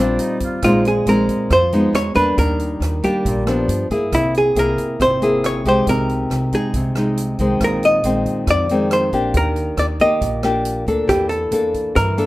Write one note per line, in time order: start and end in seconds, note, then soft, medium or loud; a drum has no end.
0.00 0.17 A#1 medium
0.00 0.61 A#2 soft
0.00 0.59 G3 medium
0.00 0.59 C4 medium
0.00 0.21 D4 medium
0.00 0.60 F4 medium
0.00 0.16 G4 medium
0.19 0.41 D#4 medium
0.19 closed hi-hat soft
0.40 0.62 F4 medium
0.40 kick soft
0.40 closed hi-hat soft
0.62 1.03 A#1 medium
0.62 1.48 A#2 medium
0.62 1.04 G#3 soft
0.62 1.04 C4 soft
0.62 1.04 D#4 medium
0.62 0.84 F4 medium
0.62 kick medium
0.62 cross-stick soft
0.62 closed hi-hat soft
0.85 1.08 G#4 medium
0.85 closed hi-hat soft
1.06 1.26 A#1 medium
1.06 1.50 G#3 medium
1.06 1.50 C4 soft
1.06 1.50 D#4 medium
1.06 1.52 A#4 medium
1.06 closed hi-hat soft
1.28 kick soft
1.28 closed hi-hat soft
1.50 1.91 F2 medium
1.50 1.92 F3 soft
1.50 1.92 C5 loud
1.50 kick soft
1.50 cross-stick medium
1.50 closed hi-hat soft
1.72 2.12 G#3 medium
1.72 2.13 B3 medium
1.72 2.13 D#4 medium
1.72 closed hi-hat soft
1.93 2.14 E2 medium
1.93 2.15 C#5 medium
1.93 cross-stick medium
1.93 closed hi-hat soft
2.15 2.36 E2 medium
2.15 2.99 G3 medium
2.15 2.99 A#3 medium
2.15 2.99 D4 medium
2.15 2.38 B4 medium
2.15 kick soft
2.15 closed hi-hat soft
2.38 2.78 D#2 medium
2.38 3.22 D#3 soft
2.38 3.05 A#4 medium
2.38 kick medium
2.38 closed hi-hat soft
2.60 closed hi-hat soft
2.80 3.01 D#2 medium
2.80 cross-stick soft
2.80 closed hi-hat soft
3.03 3.43 G3 medium
3.03 3.43 A#3 medium
3.03 3.43 D4 medium
3.03 3.87 G4 medium
3.03 kick soft
3.03 closed hi-hat soft
3.25 3.65 A#1 medium
3.25 3.67 A#2 medium
3.25 kick medium
3.25 closed hi-hat soft
3.47 3.87 F3 medium
3.47 3.87 B3 medium
3.47 3.87 D4 medium
3.47 cross-stick medium
3.47 closed hi-hat soft
3.68 3.88 G2 medium
3.68 closed hi-hat soft
3.90 4.10 G2 medium
3.90 4.52 A#3 medium
3.90 4.52 E4 medium
3.90 4.52 G#4 medium
3.90 kick soft
3.90 closed hi-hat soft
4.12 4.52 C2 medium
4.12 4.97 C3 medium
4.12 4.33 E4 medium
4.12 kick medium
4.12 cross-stick medium
4.12 closed hi-hat soft
4.34 4.58 G#4 medium
4.34 closed hi-hat soft
4.55 4.76 C2 medium
4.55 5.18 A#3 medium
4.55 5.18 E4 medium
4.55 5.18 G#4 medium
4.55 5.02 A#4 medium
4.55 closed hi-hat soft
4.78 kick soft
4.78 closed hi-hat soft
5.00 5.61 G#1 medium
5.00 5.84 C3 medium
5.00 5.45 C5 medium
5.00 kick soft
5.00 cross-stick soft
5.00 closed hi-hat soft
5.22 5.61 A#3 medium
5.22 5.62 E4 medium
5.22 5.62 G#4 medium
5.22 closed hi-hat soft
5.44 5.67 C#5 medium
5.44 cross-stick medium
5.44 closed hi-hat soft
5.65 5.85 C2 medium
5.65 6.48 G#3 medium
5.65 6.49 D#4 medium
5.65 6.49 G4 medium
5.65 5.89 C5 medium
5.65 kick soft
5.65 closed hi-hat soft
5.87 6.27 C2 medium
5.87 6.72 C3 medium
5.87 6.55 A#4 medium
5.87 kick medium
5.87 closed hi-hat soft
6.09 closed hi-hat soft
6.30 6.50 C2 medium
6.30 cross-stick medium
6.30 closed hi-hat soft
6.52 6.92 G#3 medium
6.52 6.92 D#4 medium
6.52 7.36 G#4 medium
6.52 kick soft
6.52 closed hi-hat soft
6.74 7.35 C2 medium
6.74 7.59 C3 medium
6.74 kick soft
6.74 closed hi-hat soft
6.95 7.36 G#3 medium
6.95 7.36 D#4 medium
6.95 cross-stick medium
6.95 closed hi-hat soft
7.17 closed hi-hat soft
7.39 7.59 C2 medium
7.39 8.01 D#3 medium
7.39 8.01 G#3 medium
7.39 8.01 C4 medium
7.39 kick soft
7.39 closed hi-hat soft
7.60 8.01 A#1 medium
7.60 8.45 A#2 medium
7.60 7.85 A#4 medium
7.60 kick medium
7.60 cross-stick medium
7.60 closed hi-hat soft
7.83 8.50 D#5 medium
7.83 closed hi-hat soft
8.03 8.24 A#1 medium
8.03 8.66 D#3 medium
8.03 8.66 G#3 soft
8.03 8.66 C4 medium
8.03 closed hi-hat soft
8.26 kick soft
8.26 closed hi-hat soft
8.47 9.09 F2 medium
8.47 9.32 F2 medium
8.47 8.93 D5 medium
8.47 kick soft
8.47 cross-stick medium
8.47 closed hi-hat soft
8.69 9.10 D#3 medium
8.69 9.10 G#3 medium
8.69 9.10 C4 medium
8.69 closed hi-hat soft
8.91 9.37 C5 medium
8.91 cross-stick medium
8.91 closed hi-hat soft
9.12 9.33 A#1 medium
9.12 9.96 A#3 medium
9.12 9.96 D4 medium
9.12 9.97 G4 medium
9.12 kick soft
9.12 closed hi-hat soft
9.34 9.75 D#2 medium
9.34 10.19 D#3 soft
9.34 9.81 A#4 medium
9.34 kick medium
9.34 closed hi-hat soft
9.56 closed hi-hat soft
9.77 9.98 D#2 medium
9.77 9.85 D5 medium
9.77 cross-stick medium
9.77 closed hi-hat soft
10.00 10.40 A#3 medium
10.00 10.40 G4 medium
10.00 10.41 D#5 medium
10.00 kick soft
10.00 closed hi-hat soft
10.21 10.83 A#1 medium
10.21 11.06 A#2 medium
10.21 kick soft
10.21 closed hi-hat soft
10.43 10.84 A#3 medium
10.43 10.84 D4 medium
10.43 10.84 G4 medium
10.43 cross-stick medium
10.43 closed hi-hat soft
10.65 closed hi-hat soft
10.87 11.07 D2 medium
10.87 11.49 A#3 medium
10.87 11.49 D4 medium
10.87 11.49 A4 medium
10.87 kick soft
10.87 closed hi-hat soft
11.07 11.49 E2 medium
11.07 11.93 E3 medium
11.07 11.29 G4 medium
11.07 kick medium
11.07 cross-stick medium
11.07 closed hi-hat soft
11.29 11.96 A4 medium
11.29 closed hi-hat soft
11.51 11.72 E2 medium
11.51 11.96 A#3 medium
11.51 11.96 D4 medium
11.51 11.96 A4 medium
11.51 closed hi-hat soft
11.74 kick soft
11.74 closed hi-hat soft
11.95 12.26 G2 medium
11.95 12.26 E3 medium
11.95 12.26 A#4 medium
11.95 kick soft
11.95 cross-stick soft
11.95 closed hi-hat soft
12.18 12.26 A#3 medium
12.18 12.26 D4 medium
12.18 12.26 A4 medium
12.18 closed hi-hat soft